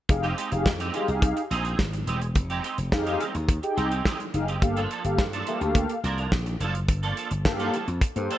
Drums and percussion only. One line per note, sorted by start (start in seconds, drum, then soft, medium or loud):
0.09 kick loud
0.09 closed hi-hat medium
0.24 closed hi-hat soft
0.38 closed hi-hat medium
0.52 closed hi-hat medium
0.66 kick loud
0.66 snare loud
0.80 closed hi-hat medium
0.94 closed hi-hat medium
1.08 closed hi-hat soft
1.22 kick loud
1.22 closed hi-hat medium
1.37 closed hi-hat medium
1.51 closed hi-hat medium
1.65 closed hi-hat soft
1.79 kick loud
1.79 snare loud
1.93 closed hi-hat soft
2.07 closed hi-hat medium
2.22 closed hi-hat medium
2.35 kick loud
2.35 closed hi-hat medium
2.50 closed hi-hat soft
2.64 closed hi-hat medium
2.78 closed hi-hat medium
2.92 kick loud
2.92 snare loud
3.07 closed hi-hat medium
3.20 closed hi-hat medium
3.35 closed hi-hat soft
3.49 kick loud
3.49 closed hi-hat medium
3.63 closed hi-hat medium
3.78 closed hi-hat medium
3.92 closed hi-hat soft
4.05 kick loud
4.05 snare loud
4.20 closed hi-hat soft
4.34 closed hi-hat medium
4.48 closed hi-hat medium
4.62 kick loud
4.62 closed hi-hat medium
4.77 closed hi-hat soft
4.91 closed hi-hat medium
5.05 closed hi-hat medium
5.18 kick loud
5.18 snare loud
5.33 closed hi-hat medium
5.47 closed hi-hat medium
5.61 closed hi-hat soft
5.75 kick loud
5.75 closed hi-hat medium
5.89 closed hi-hat medium
6.04 closed hi-hat medium
6.18 closed hi-hat soft
6.32 kick loud
6.32 snare loud
6.46 closed hi-hat soft
6.60 closed hi-hat medium
6.75 closed hi-hat medium
6.89 kick loud
6.89 closed hi-hat medium
7.03 closed hi-hat soft
7.17 closed hi-hat medium
7.31 closed hi-hat medium
7.45 kick loud
7.45 snare loud
7.60 closed hi-hat medium
7.73 closed hi-hat medium
7.88 closed hi-hat soft
8.01 kick loud
8.01 closed hi-hat loud
8.16 closed hi-hat soft
8.30 closed hi-hat medium